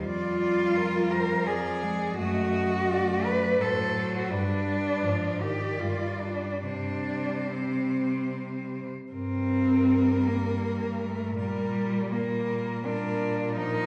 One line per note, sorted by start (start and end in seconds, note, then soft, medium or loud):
0.00 1.49 G3 medium
0.05 2.17 F2 medium
0.05 1.12 F4 medium
0.05 0.41 D5 medium
0.41 0.78 D5 medium
0.76 1.14 A#4 medium
1.11 1.48 A#4 medium
1.11 1.49 C5 medium
1.47 1.84 F3 medium
1.47 2.17 G#4 medium
1.47 2.19 D5 medium
1.83 2.17 G#3 medium
2.18 3.58 F#2 medium
2.18 2.89 A3 medium
2.18 3.27 F#4 medium
2.18 2.55 D#5 medium
2.56 2.93 D#5 medium
2.90 3.62 A3 medium
2.90 3.63 D5 medium
3.25 3.63 B4 medium
3.60 4.30 A2 medium
3.60 4.34 F#3 medium
3.60 4.14 A4 medium
3.60 4.34 C5 medium
4.15 4.33 F#4 medium
4.30 5.04 G2 medium
4.30 4.67 G3 medium
4.30 5.43 D4 medium
4.30 5.05 B4 soft
4.68 5.05 G3 medium
5.02 5.79 G#2 soft
5.02 5.43 F3 medium
5.02 6.66 D5 soft
5.41 5.83 D#3 medium
5.41 5.81 G4 medium
5.79 6.65 G2 soft
5.79 6.65 G3 soft
5.79 6.22 F4 medium
6.21 6.63 D4 medium
6.63 8.92 C3 soft
6.63 8.89 G3 soft
6.63 7.49 D4 medium
6.63 8.92 C5 soft
7.48 8.73 C4 soft
9.12 11.34 G2 medium
9.12 11.34 G3 medium
9.12 10.28 C4 medium
9.12 11.34 A#4 medium
10.26 11.03 A#3 medium
11.01 11.37 A3 medium
11.37 13.86 A#2 medium
11.37 12.13 G3 medium
11.37 12.10 G3 medium
11.37 12.10 A#4 soft
12.11 12.83 G3 medium
12.11 12.87 A#3 medium
12.11 12.84 A#4 soft
12.84 13.59 G3 medium
12.84 13.55 D4 medium
12.84 13.56 A#4 medium
13.56 13.86 F3 medium
13.56 13.86 D#4 medium
13.56 13.86 A#4 medium